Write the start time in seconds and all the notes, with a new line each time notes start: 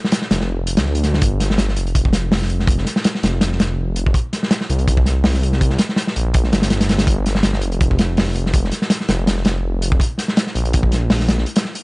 0.04 snare
0.12 snare, closed hi-hat
0.22 snare
0.31 F1, snare, closed hi-hat
0.40 snare
0.67 closed hi-hat
0.77 D2, snare, closed hi-hat
0.85 snare
0.95 closed hi-hat
1.03 snare, closed hi-hat
1.14 snare
1.22 G1, kick, closed hi-hat
1.40 snare, closed hi-hat
1.50 snare
1.58 snare, closed hi-hat
1.68 snare
1.76 F1, closed hi-hat
1.87 closed hi-hat
1.95 kick, closed hi-hat
2.05 kick
2.13 snare, closed hi-hat
2.32 snare, open hi-hat
2.42 snare
2.50 closed hi-hat
2.60 snare
2.67 kick, closed hi-hat
2.78 snare
2.86 snare, closed hi-hat
2.96 snare
3.04 snare, closed hi-hat
3.15 snare
3.23 F1, snare, closed hi-hat
3.41 snare, closed hi-hat
3.52 snare
3.60 snare, closed hi-hat
3.96 closed hi-hat
4.06 kick
4.14 kick, closed hi-hat
4.33 snare, closed hi-hat
4.43 snare
4.51 snare, closed hi-hat
4.61 snare
4.70 C2, closed hi-hat
4.79 closed hi-hat
4.88 kick, closed hi-hat
4.97 kick
5.05 snare, closed hi-hat
5.24 snare, open hi-hat
5.34 snare
5.43 closed hi-hat
5.52 snare
5.61 kick, closed hi-hat
5.70 snare
5.78 snare, closed hi-hat
5.89 snare
5.96 snare, closed hi-hat
6.07 snare
6.16 A#1, closed hi-hat
6.34 kick, closed hi-hat
6.44 snare
6.53 G1, snare, closed hi-hat
6.62 snare, closed hi-hat
6.70 snare, closed hi-hat
6.81 snare, closed hi-hat
6.89 snare, closed hi-hat
6.98 snare, closed hi-hat
7.07 G1, kick, closed hi-hat
7.26 snare, closed hi-hat
7.35 snare
7.43 snare, closed hi-hat
7.53 snare
7.61 F1, closed hi-hat
7.72 closed hi-hat
7.81 kick, closed hi-hat
7.91 kick
7.99 snare, closed hi-hat
8.17 snare, open hi-hat
8.27 snare
8.35 closed hi-hat
8.46 snare
8.53 kick, closed hi-hat
8.64 snare
8.72 snare, closed hi-hat
8.82 snare
8.90 snare, closed hi-hat
9.00 snare
9.09 F1, snare, closed hi-hat
9.27 snare, closed hi-hat
9.37 snare
9.45 snare, closed hi-hat
9.82 closed hi-hat
9.92 kick
10.00 kick, closed hi-hat
10.18 snare, closed hi-hat
10.28 snare
10.37 snare, closed hi-hat
10.47 snare
10.55 A#1, closed hi-hat
10.65 closed hi-hat
10.73 kick, closed hi-hat
10.83 kick
10.92 snare, closed hi-hat
11.10 snare, open hi-hat
11.20 snare
11.28 snare, closed hi-hat
11.38 snare
11.46 closed hi-hat
11.56 snare, closed hi-hat
11.65 snare
11.75 closed hi-hat